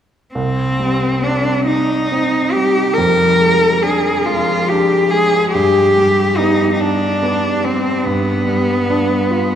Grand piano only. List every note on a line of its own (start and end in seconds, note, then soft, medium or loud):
0.35 2.93 C2 soft
0.80 1.49 G3 soft
1.22 1.93 C4 soft
1.67 2.37 D#4 soft
2.12 2.81 C4 soft
2.56 2.98 G3 soft
2.98 5.50 F2 soft
3.40 4.09 G#3 soft
3.84 4.53 D4 soft
4.27 4.95 G#3 soft
4.71 5.38 D4 soft
5.13 5.54 G#3 soft
5.55 8.03 G2 soft
5.98 6.64 G3 soft
6.40 7.06 B3 soft
6.81 7.48 D4 soft
7.23 7.90 B3 soft
7.64 8.06 G3 soft
8.06 9.55 G2 soft
8.48 9.14 G3 soft
8.90 9.55 D4 soft
9.31 9.55 F4 soft